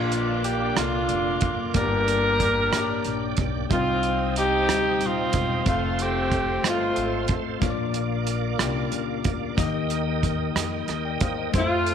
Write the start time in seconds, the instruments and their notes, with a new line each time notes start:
Already playing: upright bass A#1, tine electric piano A#2 A#3 D4 F4 D5, saxophone section A#3 D4 F4, tonewheel organ A#3 D5 F5 D6
0.12 closed hi-hat
0.44 saxophone section G4, closed hi-hat
0.75 upright bass C2, tine electric piano A#3 D4 F4 A4, saxophone section A#3 D4 F4, cross-stick, closed hi-hat
1.09 upright bass F1, closed hi-hat
1.41 upright bass F#1, saxophone section F4, kick, closed hi-hat
1.74 upright bass G1, tine electric piano G2 A#3 D4 G4 D5, saxophone section D4 A#4, tonewheel organ G5, kick, closed hi-hat
1.79 saxophone section G4
2.08 closed hi-hat
2.40 kick, closed hi-hat
2.72 upright bass A1, tine electric piano A#3 D4 G4 C#5, cross-stick, closed hi-hat
2.81 tine electric piano D5
3.04 upright bass A#1, closed hi-hat
3.37 upright bass B1, kick, closed hi-hat
3.70 upright bass C2, tine electric piano C3 G3 C4 D#4 A#4, saxophone section C4 F4, tonewheel organ C5 D#5 D#6, kick, closed hi-hat
3.79 tine electric piano C5
4.03 closed hi-hat
4.36 saxophone section C4 D#4 G4, closed hi-hat
4.68 upright bass D2, tine electric piano G3 C4 D#4 G4, cross-stick, closed hi-hat
5.01 upright bass D#1, saxophone section C4 F4, closed hi-hat
5.33 upright bass E1, kick, closed hi-hat
5.65 upright bass F1, tine electric piano A3 C4 F4 C5, saxophone section A3 C4 F4, tonewheel organ A4 F5 C6, kick, closed hi-hat
5.99 saxophone section C4 G4, closed hi-hat
6.32 kick, closed hi-hat
6.63 upright bass G1, tine electric piano A3 C4 F4 D#5, saxophone section C4, cross-stick, closed hi-hat
6.68 saxophone section A3 F4
6.96 upright bass G#1, closed hi-hat
7.28 upright bass A1, kick, closed hi-hat
7.60 upright bass A#1, tine electric piano A#2 A#3 D4 F4 C#5, tonewheel organ A#4 D5 D6, kick, closed hi-hat
7.70 tine electric piano D5
7.94 closed hi-hat
8.27 closed hi-hat
8.59 upright bass C2, tine electric piano A#3 C#4 F4 G4, cross-stick, closed hi-hat
8.66 tine electric piano D4
8.92 upright bass C#2, closed hi-hat
9.24 upright bass D2, kick, closed hi-hat
9.56 upright bass D#2, tine electric piano D#3 A#3 D#4 G4 D#5, tonewheel organ D#5 G5 D#6, kick, closed hi-hat
9.90 closed hi-hat
10.23 kick, closed hi-hat
10.56 upright bass F2, cross-stick, closed hi-hat
10.88 upright bass D#2, cross-stick, closed hi-hat
11.05 tine electric piano D5 G5
11.21 upright bass E2, tine electric piano C5 F5, kick, closed hi-hat
11.38 tine electric piano A#4 D#5
11.52 upright bass F2, tine electric piano G3 C4 F4 C5, saxophone section A3 C4, tonewheel organ A4 C5 F5 C6, kick, closed hi-hat
11.58 tine electric piano A3, saxophone section F4
11.86 closed hi-hat